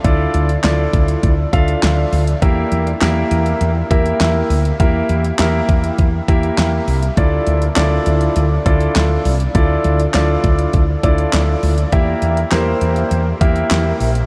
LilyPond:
<<
  \new Staff \with { instrumentName = "Grand piano" } { \time 4/4 \key d \minor \tempo 4 = 101 <d' e' f' a' d''>8. r16 <d' e' f' a' d''>4 r8 <d' f' a' e'' f''>4 r8 | <bes e' g' bes' e''>8. r16 <bes e' g' bes' e''>4 r8 <bes e' g' bes' e''>4 r8 | <bes e' g' bes' e''>8. r16 <bes e' g' bes' e''>4 r8 <bes e' g' bes' e''>4 r8 | <d' e' f' a' d''>8. r16 <d' e' f' a' d''>4 r8 <d' e' f' a' d''>4 r8 |
<d' e' f' a' d''>8. r16 <d' e' f' a' d''>4 r8 <d' e' f' a' d''>4 r8 | <bes e' g' bes' e''>8. r16 <bes e' g' bes' c''>4 r8 <bes e' g' bes' e''>4 r8 | }
  \new Staff \with { instrumentName = "Fretless electric bass" } { \clef bass \time 4/4 \key d \minor d,8 d,8 d,8 d,8 d,8 d,8 d,8 d,8 | e,8 e,8 e,8 e,8 e,8 e,8 e,8 d,8 | e,8 e,8 e,8 e,8 e,8 e,8 e,8 c,8 | d,8 d,8 d,8 d,8 d,8 d,8 d,8 c,8 |
d,8 d,8 d,8 d,8 d,8 d,8 d,8 d,8 | e,8 e,8 e,8 e,8 e,8 e,8 e,8 bes,,8 | }
  \new DrumStaff \with { instrumentName = "Drums" } \drummode { \time 4/4 <hh bd>8 hh16 hh16 <hc hh sn>8 <hh bd>16 hh16 <hh bd>8 <hh bd>16 hh16 <hc hh sn>8 hho16 hh16 | <hh bd>8 hh16 hh16 <hc hh sn>8 hh16 hh16 hh8 <hh bd>16 hh16 <hc hh sn>8 hho16 hh16 | <hh bd>8 hh16 hh16 <hc hh sn>8 <hh bd>16 hh16 <hh bd>8 <hh bd>16 hh16 <hc hh sn>8 hho16 hh16 | <hh bd>8 hh16 hh16 <hc hh sn>8 hh16 hh16 hh8 <hh bd>16 hh16 <hc hh sn>8 hho16 hh16 |
<hh bd>8 hh16 hh16 <hc hh sn>8 <hh bd>16 hh16 <hh bd>8 <hh bd>16 hh16 <hc hh sn>8 hho16 hh16 | <hh bd>8 hh16 hh16 <hc hh sn>8 hh16 hh16 hh8 <hh bd>16 hh16 <hc hh sn>8 hho16 hh16 | }
>>